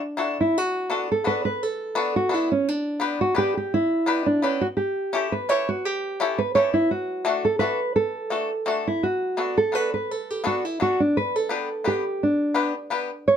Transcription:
Already playing: nylon-string guitar D4
0.17 five-string banjo D4 E4 F#4 A4
0.41 nylon-string guitar E4
0.58 nylon-string guitar F#4
0.90 five-string banjo B3 D4 F#4 A4
1.12 nylon-string guitar A4
1.24 five-string banjo B3 D4 F#4 A4, nylon-string guitar B4
1.45 nylon-string guitar B4
1.63 nylon-string guitar A4
1.95 five-string banjo B3 D4 F#4 A4
2.16 nylon-string guitar F#4
2.29 five-string banjo B3 D4 F#4 A4
2.34 nylon-string guitar E4
2.52 nylon-string guitar C#4
2.68 nylon-string guitar D4
3.00 five-string banjo B3 D4 G4 B4
3.21 nylon-string guitar F#4
3.35 five-string banjo B3 D4 G4 B4, nylon-string guitar G4
3.57 nylon-string guitar G4
3.74 nylon-string guitar E4
4.06 five-string banjo B3 D4 G4 B4
4.26 nylon-string guitar D4
4.42 five-string banjo B3 D4 G4 B4, nylon-string guitar C#4
4.61 nylon-string guitar F#4
4.77 nylon-string guitar G4
5.13 five-string banjo C#4 E4 G4 A4
5.32 nylon-string guitar B4
5.49 five-string banjo C#4 E4 G4 A4, nylon-string guitar C#5
5.69 nylon-string guitar F#4
5.85 nylon-string guitar G4
6.20 five-string banjo C#4 E4 G4 A4
6.38 nylon-string guitar B4
6.55 five-string banjo C#4 E4 G4 A4, nylon-string guitar C#5
6.74 nylon-string guitar E4
6.91 nylon-string guitar F#4
7.25 five-string banjo A3 D4 F#4 A4
7.45 nylon-string guitar A4
7.59 five-string banjo A3 D4 F#4 A4, nylon-string guitar B4
7.96 nylon-string guitar A4
8.30 five-string banjo A3 D4 F#4 A4
8.66 five-string banjo A3 D4 F#4 A4
8.87 nylon-string guitar E4
9.03 nylon-string guitar F#4
9.37 five-string banjo B3 D4 F#4 A4
9.58 nylon-string guitar A4
9.72 five-string banjo B3 D4 F#4 A4, nylon-string guitar B4
9.94 nylon-string guitar B4
10.11 nylon-string guitar A4
10.30 nylon-string guitar G4
10.44 five-string banjo B3 D4 F#4 A4, nylon-string guitar F#4
10.65 nylon-string guitar E4
10.80 five-string banjo B3 D4 F#4 A4, nylon-string guitar F#4
11.00 nylon-string guitar D4
11.17 nylon-string guitar B4
11.36 nylon-string guitar A4
11.49 five-string banjo B3 D4 G4 B4
11.84 five-string banjo B3 D4 G4 B4, nylon-string guitar G4
12.23 nylon-string guitar D4
12.54 five-string banjo B3 D4 G4 B4
12.90 five-string banjo B3 D4 G4 B4
13.28 nylon-string guitar C#5

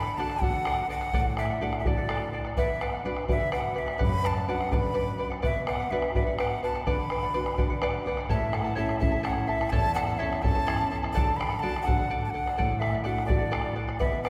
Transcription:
Already playing: nylon-string guitar D3, quena B5
0.07 charango D5 F#5
0.18 nylon-string guitar D4 F#4 A4, charango A4 D5 F#5, quena A5
0.30 bombo rim
0.41 nylon-string guitar D4 F#4 A4, charango A4 D5 F#5, quena F#5, bombo low
0.54 charango D5 F#5
0.65 charango A4 D5 F#5, bombo rim
0.89 charango A4 D5 F#5, quena F#5
1.00 charango D5 F#5, bombo rim
1.13 nylon-string guitar A2, charango A4 D5 F#5, bombo rim, bombo low
1.37 charango A4 D5 F#5, quena E5, bombo rim
1.50 charango D5 F#5
1.61 nylon-string guitar D4 F#4 A4, charango A4 D5 F#5, quena F#5
1.73 bombo rim
1.79 quena E5
1.85 nylon-string guitar D4 F#4 A4, charango A4 D5 F#5, quena D5, bombo low
1.97 charango D5 F#5
2.09 charango A4 D5 F#5, bombo rim
2.33 charango A4 D5 F#5, bombo rim
2.45 charango D5 F#5, bombo rim
2.57 nylon-string guitar B2, charango B4 D5 F#5, quena E5, bombo rim, bombo low
2.81 charango B4 D5 F#5, quena F#5, bombo rim
2.93 charango D5 F#5
3.04 nylon-string guitar D4 F#4 B4, charango B4 D5 F#5
3.17 bombo rim
3.28 nylon-string guitar D4 F#4 B4, charango B4 D5 F#5, quena E5, bombo low
3.39 charango D5 F#5
3.52 charango B4 D5 F#5, quena F#5, bombo rim
3.74 charango B4 D5 F#5, quena E5
3.86 charango D5 F#5, bombo rim
3.98 nylon-string guitar F#2, charango B4 D5 F#5, bombo rim, bombo low
4.03 quena B5
4.23 charango B4 D5 F#5, quena A5, bombo rim
4.36 charango D5 F#5
4.48 nylon-string guitar D4 F#4 B4, charango B4 D5 F#5, quena F#5
4.61 bombo rim
4.71 nylon-string guitar D4 F#4 B4, charango B4 D5 F#5, quena B5, bombo low
4.83 charango D5 F#5
4.94 charango B4 D5 F#5
5.18 charango B4 D5 F#5
5.30 charango D5 F#5, bombo rim
5.42 nylon-string guitar B2, charango B4 D5 F#5, quena E5, bombo rim, bombo low
5.67 charango B4 D5 F#5, quena F#5, bombo rim
5.80 charango D5 F#5
5.91 nylon-string guitar D4 F#4 B4, charango B4 D5 F#5, quena E5
6.02 bombo rim
6.15 nylon-string guitar D4 F#4 B4, charango B4 D5 F#5, quena E5, bombo low
6.27 charango D5 F#5
6.38 charango B4 D5 F#5, quena F#5, bombo rim
6.63 charango B4 D5 F#5, quena A5
6.74 charango D5 F#5, bombo rim
6.86 nylon-string guitar D3, charango B4 D5 F#5, quena B5, bombo low
7.10 charango B4 D5 F#5, bombo rim
7.23 charango D5 F#5
7.34 nylon-string guitar D4 F#4 B4, charango B4 D5 F#5, bombo rim
7.46 bombo rim
7.58 nylon-string guitar D4 F#4 B4, charango B4 D5 F#5, bombo low
7.70 charango D5 F#5
7.82 charango B4 D5 F#5, nylon-string guitar D5, bombo rim
8.06 charango B4 D5 F#5, nylon-string guitar F#5
8.17 charango D5 F#5, bombo rim
8.29 nylon-string guitar A2, charango E4 A4 C#5 E5 A5, quena E5, bombo rim, bombo low
8.52 charango E4 A4 E5 A5, quena F#5, bombo rim
8.64 charango E4 A4 A5
8.75 nylon-string guitar C#4 E4 A4, charango E4 A4 C#5 E5 A5, quena E5
8.89 bombo rim
8.99 nylon-string guitar C#4 E4 A4, charango E4 A4 E5 A5, quena E5, bombo low
9.12 charango E4 A4 A5
9.23 charango E4 A4 C#5 E5 A5, quena F#5, bombo rim
9.47 charango E4 A4 E5 A5, quena E5
9.61 charango E4 A4 A5, bombo rim
9.70 nylon-string guitar E2, charango E4 A4 C#5 E5 A5, quena A5, bombo rim, bombo low
9.94 charango E4 A4 E5 A5, quena F#5, bombo rim
10.07 charango E4 A4 A5
10.18 nylon-string guitar C#4 E4, charango E4 A4 C#5 E5 A5, quena E5
10.22 nylon-string guitar A4
10.33 bombo rim
10.42 nylon-string guitar C#4 E4 A4, charango E4 A4 E5 A5, quena A5, bombo low
10.55 charango E4 A4 A5
10.67 charango E4 A4 C#5 E5 A5, bombo rim
10.91 charango E4 A4 E5 A5
11.03 charango E4 A4 A5, bombo rim
11.13 nylon-string guitar D3, charango A4 D5 F#5, quena A5, bombo rim, bombo low
11.36 charango A4 D5 F#5, quena B5
11.41 bombo rim
11.50 charango D5 F#5
11.59 nylon-string guitar D4, charango A4 D5 F#5, quena A5
11.63 nylon-string guitar F#4 A4
11.76 bombo rim
11.82 charango A4, quena F#5
11.87 nylon-string guitar D4 F#4 A4, charango D5 F#5, bombo low
11.98 charango D5 F#5
12.10 charango A4 D5 F#5
12.25 quena A5
12.30 charango A4, quena F#5
12.35 charango D5 F#5
12.46 charango D5 F#5, bombo rim
12.57 nylon-string guitar A2, charango A4 D5 F#5, bombo rim, bombo low
12.71 bombo rim
12.79 charango A4 D5 F#5, quena E5, bombo rim
12.93 charango D5 F#5, bombo rim
13.04 nylon-string guitar D4 F#4 A4, charango A4 D5 F#5, quena F#5
13.18 bombo rim
13.26 nylon-string guitar D4 F#4, charango A4 D5 F#5, quena D5, bombo low
13.30 nylon-string guitar A4
13.39 charango D5 F#5
13.51 charango A4 D5 F#5, bombo rim
13.65 bombo rim
13.75 charango A4 D5 F#5
13.87 charango D5 F#5, bombo rim
13.99 nylon-string guitar B2, charango B4 D5 F#5, quena E5, bombo rim, bombo low
14.23 charango B4 D5 F#5, quena F#5, bombo rim

